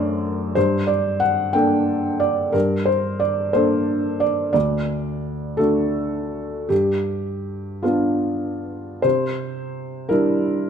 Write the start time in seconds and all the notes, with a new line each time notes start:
Already playing: F#2 A3 D4 A4 A#4 C5 D5
0.55 G2 C5
0.87 D5
1.20 F#5
1.53 A#3 D4 A4 G5
2.20 D5
2.52 G2 A#4
2.85 C5
3.20 D5
3.53 A#3 D4 A4 C5
4.20 D5
4.53 D2 D5
5.57 A3 D4 F#4 A4
6.69 G2 G4
7.84 B3 D4 F4
9.02 C3 C5
10.09 G3 D4 E4 A#4